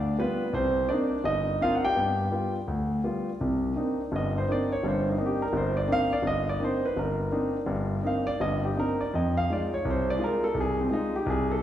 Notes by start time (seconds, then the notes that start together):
Already playing: D2 D4 D5
0.18 G3 B3 F4 B4
0.53 C2 C4 C5
0.89 A#3 C4 D4 D#4 D5
1.24 G1 D#4 D#5
1.61 A#3 C4 D4 D#4 F4 F5
1.75 F#5
1.84 G4 G5
1.96 G2 B3
2.31 G3 B3 F4
2.68 D2
3.04 G3 B3 F4
3.41 C2 C3
3.76 A#3 C4 D4 D#4
4.12 G1 G2
4.16 D#5
4.38 C5
4.48 A#3 C4 D4 D#4 D5
4.72 C#5
4.83 G1 G2
4.88 C5
5.09 D#4
5.18 A#3 C4 D4 D#4
5.26 G4
5.42 A#4
5.53 G1
5.57 C5
5.77 D5
5.88 A#3 C4 D4 D#4
5.92 F5
6.13 D5
6.23 G1
6.27 D#5
6.49 D5
6.59 A#3 C4 D4 D#4
6.64 C5
6.86 B4
6.96 G1 A#4
7.31 A#3 C4 D4 D#4
7.66 G1 G2
8.03 A#3 C4 D4 D#4 F5
8.27 D5
8.40 G1 G2 D#5
8.65 G4
8.76 A#3 C4 D4 D#4 A#4
9.01 D5
9.14 F2 D#5
9.37 F5
9.50 G#3 D#4 F4 D5
9.74 C#5
9.85 C2
9.90 C5
10.10 D5
10.18 G#3 D#4 F4
10.24 A#4
10.44 A4
10.54 C2
10.60 G#4
10.81 C4
10.89 G#3 D#4 F4
11.16 G4
11.26 C2 G#4
11.52 A4